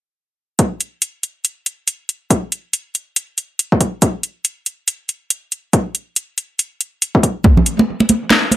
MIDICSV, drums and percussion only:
0, 0, Header, 1, 2, 480
1, 0, Start_track
1, 0, Tempo, 428571
1, 662, Time_signature, 4, 2, 24, 8
1, 9597, End_track
2, 0, Start_track
2, 0, Title_t, "Drums"
2, 659, Note_on_c, 9, 42, 72
2, 661, Note_on_c, 9, 36, 109
2, 771, Note_off_c, 9, 42, 0
2, 773, Note_off_c, 9, 36, 0
2, 901, Note_on_c, 9, 42, 49
2, 1013, Note_off_c, 9, 42, 0
2, 1140, Note_on_c, 9, 42, 75
2, 1252, Note_off_c, 9, 42, 0
2, 1381, Note_on_c, 9, 42, 50
2, 1493, Note_off_c, 9, 42, 0
2, 1620, Note_on_c, 9, 42, 75
2, 1732, Note_off_c, 9, 42, 0
2, 1861, Note_on_c, 9, 42, 50
2, 1973, Note_off_c, 9, 42, 0
2, 2101, Note_on_c, 9, 42, 73
2, 2213, Note_off_c, 9, 42, 0
2, 2341, Note_on_c, 9, 42, 49
2, 2453, Note_off_c, 9, 42, 0
2, 2582, Note_on_c, 9, 36, 117
2, 2582, Note_on_c, 9, 42, 73
2, 2694, Note_off_c, 9, 36, 0
2, 2694, Note_off_c, 9, 42, 0
2, 2823, Note_on_c, 9, 42, 52
2, 2935, Note_off_c, 9, 42, 0
2, 3062, Note_on_c, 9, 42, 77
2, 3174, Note_off_c, 9, 42, 0
2, 3303, Note_on_c, 9, 42, 51
2, 3415, Note_off_c, 9, 42, 0
2, 3542, Note_on_c, 9, 42, 75
2, 3654, Note_off_c, 9, 42, 0
2, 3782, Note_on_c, 9, 42, 51
2, 3894, Note_off_c, 9, 42, 0
2, 4023, Note_on_c, 9, 42, 75
2, 4135, Note_off_c, 9, 42, 0
2, 4169, Note_on_c, 9, 36, 94
2, 4263, Note_off_c, 9, 36, 0
2, 4263, Note_on_c, 9, 36, 58
2, 4263, Note_on_c, 9, 42, 51
2, 4375, Note_off_c, 9, 36, 0
2, 4375, Note_off_c, 9, 42, 0
2, 4502, Note_on_c, 9, 42, 71
2, 4504, Note_on_c, 9, 36, 117
2, 4614, Note_off_c, 9, 42, 0
2, 4616, Note_off_c, 9, 36, 0
2, 4741, Note_on_c, 9, 42, 49
2, 4853, Note_off_c, 9, 42, 0
2, 4981, Note_on_c, 9, 42, 75
2, 5093, Note_off_c, 9, 42, 0
2, 5221, Note_on_c, 9, 42, 49
2, 5333, Note_off_c, 9, 42, 0
2, 5462, Note_on_c, 9, 42, 74
2, 5574, Note_off_c, 9, 42, 0
2, 5701, Note_on_c, 9, 42, 50
2, 5813, Note_off_c, 9, 42, 0
2, 5940, Note_on_c, 9, 42, 76
2, 6052, Note_off_c, 9, 42, 0
2, 6182, Note_on_c, 9, 42, 49
2, 6294, Note_off_c, 9, 42, 0
2, 6421, Note_on_c, 9, 42, 69
2, 6422, Note_on_c, 9, 36, 116
2, 6533, Note_off_c, 9, 42, 0
2, 6534, Note_off_c, 9, 36, 0
2, 6661, Note_on_c, 9, 42, 47
2, 6773, Note_off_c, 9, 42, 0
2, 6902, Note_on_c, 9, 42, 76
2, 7014, Note_off_c, 9, 42, 0
2, 7142, Note_on_c, 9, 42, 49
2, 7254, Note_off_c, 9, 42, 0
2, 7382, Note_on_c, 9, 42, 74
2, 7494, Note_off_c, 9, 42, 0
2, 7622, Note_on_c, 9, 42, 51
2, 7734, Note_off_c, 9, 42, 0
2, 7863, Note_on_c, 9, 42, 71
2, 7975, Note_off_c, 9, 42, 0
2, 8007, Note_on_c, 9, 36, 98
2, 8101, Note_off_c, 9, 36, 0
2, 8101, Note_on_c, 9, 36, 59
2, 8103, Note_on_c, 9, 42, 48
2, 8213, Note_off_c, 9, 36, 0
2, 8215, Note_off_c, 9, 42, 0
2, 8336, Note_on_c, 9, 62, 53
2, 8341, Note_on_c, 9, 36, 116
2, 8341, Note_on_c, 9, 63, 88
2, 8448, Note_off_c, 9, 62, 0
2, 8453, Note_off_c, 9, 36, 0
2, 8453, Note_off_c, 9, 63, 0
2, 8482, Note_on_c, 9, 64, 82
2, 8581, Note_on_c, 9, 42, 80
2, 8594, Note_off_c, 9, 64, 0
2, 8693, Note_off_c, 9, 42, 0
2, 8728, Note_on_c, 9, 62, 70
2, 8840, Note_off_c, 9, 62, 0
2, 8964, Note_on_c, 9, 62, 52
2, 9061, Note_on_c, 9, 42, 77
2, 9067, Note_on_c, 9, 63, 66
2, 9076, Note_off_c, 9, 62, 0
2, 9173, Note_off_c, 9, 42, 0
2, 9179, Note_off_c, 9, 63, 0
2, 9300, Note_on_c, 9, 62, 86
2, 9303, Note_on_c, 9, 38, 110
2, 9412, Note_off_c, 9, 62, 0
2, 9415, Note_off_c, 9, 38, 0
2, 9536, Note_on_c, 9, 62, 48
2, 9542, Note_on_c, 9, 42, 81
2, 9597, Note_off_c, 9, 42, 0
2, 9597, Note_off_c, 9, 62, 0
2, 9597, End_track
0, 0, End_of_file